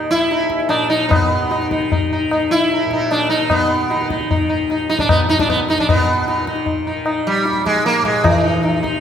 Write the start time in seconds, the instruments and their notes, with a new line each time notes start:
Already playing: tanpura D#2 A#2 D#3
0.11 tanpura D#2, sitar E4
0.31 sitar D#4, tabla te
0.41 tabla te
0.50 tabla ke
0.60 tabla te
0.69 tanpura A#2, sitar D4, tabla na
0.90 sitar D#4
1.09 sitar B3, tabla na, tabla ge
1.22 tanpura D#3
1.51 sitar D#4, tabla te
1.62 tabla te
1.71 sitar D#4, tabla ke
1.78 tanpura D#3
1.82 tabla te
1.92 sitar D#4, tabla tin, tabla ge
2.13 sitar D#4
2.31 tanpura D#2, sitar D#4, tabla na
2.51 sitar E4
2.72 sitar D#4, tabla te
2.82 tanpura A#2, tabla te
2.91 sitar D#4, tabla ke
3.01 tabla te
3.11 sitar D4, tabla na
3.30 sitar D#4
3.41 tanpura D#3
3.50 sitar B3, tabla na, tabla ge
3.90 sitar D#4, tabla te
3.94 tanpura D#3
4.01 tabla te
4.10 sitar D#4, tabla ke
4.21 tabla te
4.31 sitar D#4, tabla tin, tabla ge
4.49 tanpura D#2, sitar D#4
4.70 sitar D#4, tabla te
4.89 sitar D#4, tabla te
4.99 sitar D4, tabla ke
5.04 tanpura A#2
5.09 sitar B3, tabla na, tabla ge
5.29 sitar D#4, tabla te
5.39 sitar D4, tabla ke
5.49 sitar B3, tabla na, tabla ge
5.56 tanpura D#3
5.69 sitar D#4, tabla te
5.78 sitar D4, tabla ke
5.88 tanpura A#2, sitar B3 D#4, tabla na, tabla ge
6.28 sitar D#4, tabla te
6.37 tabla te
6.42 tanpura D#3
6.47 sitar D#4, tabla ke
6.56 tabla te
6.66 tabla tin, tabla ge
6.87 sitar D#4
6.96 tanpura D#3
7.06 sitar D#4, tabla na
7.27 sitar G3
7.46 tabla te
7.50 tanpura D#2
7.55 tabla te
7.66 sitar G#3, tabla ke
7.76 tabla te
7.86 sitar A#3, tabla te
7.95 tabla te
8.02 tanpura A#2, sitar G#3, tabla ke
8.15 tabla te
8.24 sitar E3, tabla na, tabla ge
8.43 sitar D#4
8.57 tanpura D#3
8.63 sitar D#4, tabla te
8.74 tabla te
8.83 sitar D#4, tabla ke
8.94 tabla te